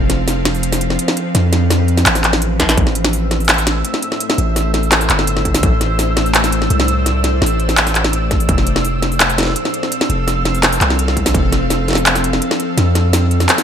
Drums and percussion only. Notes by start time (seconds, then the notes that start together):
0.10 snare, closed hi-hat
0.28 snare, open hi-hat
0.45 snare, closed hi-hat
0.55 open hi-hat
0.63 closed hi-hat
0.72 snare, open hi-hat
0.81 closed hi-hat
0.90 snare
0.99 closed hi-hat
1.08 snare
1.17 closed hi-hat
1.35 snare, closed hi-hat
1.53 snare, closed hi-hat
1.70 snare, open hi-hat
1.88 closed hi-hat
1.97 snare, open hi-hat
2.06 clap, closed hi-hat
2.15 snare, open hi-hat
2.24 clap, closed hi-hat
2.33 snare
2.42 closed hi-hat
2.60 kick, snare, closed hi-hat
2.69 snare, open hi-hat
2.77 kick, closed hi-hat
2.87 snare
2.95 closed hi-hat
3.04 snare
3.13 open hi-hat
3.31 snare, closed hi-hat
3.40 open hi-hat
3.45 open hi-hat
3.49 clap, snare, closed hi-hat, open hi-hat
3.54 open hi-hat
3.58 open hi-hat
3.67 snare, closed hi-hat
3.85 closed hi-hat
3.94 snare
4.02 closed hi-hat
4.12 snare
4.20 closed hi-hat
4.30 snare
4.38 closed hi-hat
4.56 snare, open hi-hat
4.74 snare, closed hi-hat
4.83 open hi-hat
4.92 clap, snare, closed hi-hat
5.01 open hi-hat
5.10 clap, closed hi-hat
5.19 snare
5.27 closed hi-hat
5.37 snare
5.45 kick, closed hi-hat
5.54 snare, open hi-hat
5.63 kick, closed hi-hat
5.81 snare, closed hi-hat
5.99 snare, open hi-hat
6.17 snare, closed hi-hat
6.26 open hi-hat
6.34 clap, closed hi-hat
6.44 snare, open hi-hat
6.52 closed hi-hat
6.62 snare
6.70 closed hi-hat
6.80 snare
6.88 closed hi-hat
7.06 snare, closed hi-hat
7.24 snare, closed hi-hat
7.42 snare
7.46 open hi-hat
7.60 closed hi-hat
7.69 snare, open hi-hat
7.77 clap, closed hi-hat
7.87 snare, open hi-hat
7.95 clap, closed hi-hat
8.04 snare
8.13 closed hi-hat
8.31 kick, snare, closed hi-hat
8.40 open hi-hat
8.49 kick, closed hi-hat
8.58 snare
8.67 closed hi-hat
8.76 snare
8.85 open hi-hat
9.02 snare, closed hi-hat
9.12 open hi-hat
9.20 clap, snare, closed hi-hat
9.30 open hi-hat
9.38 snare, closed hi-hat
9.40 snare
9.43 snare
9.45 snare
9.47 snare
9.50 snare
9.52 snare
9.54 snare, closed hi-hat
9.65 snare
9.74 closed hi-hat
9.83 snare
9.92 closed hi-hat
10.01 snare
10.10 closed hi-hat
10.28 snare, open hi-hat
10.45 snare, closed hi-hat
10.55 open hi-hat
10.63 clap, snare, closed hi-hat
10.72 open hi-hat
10.81 clap, closed hi-hat
10.90 snare
10.99 closed hi-hat
11.08 snare
11.17 kick, closed hi-hat
11.26 snare, open hi-hat
11.34 kick, closed hi-hat
11.52 snare, closed hi-hat
11.70 snare, open hi-hat
11.88 snare, closed hi-hat
11.91 snare
11.93 snare
11.95 snare, open hi-hat
12.06 clap, closed hi-hat
12.15 snare, open hi-hat
12.24 closed hi-hat
12.33 snare
12.42 closed hi-hat
12.51 snare
12.60 closed hi-hat
12.78 snare, closed hi-hat
12.95 snare, closed hi-hat
13.13 snare, open hi-hat
13.31 closed hi-hat
13.40 snare, open hi-hat
13.49 clap, closed hi-hat
13.58 snare, open hi-hat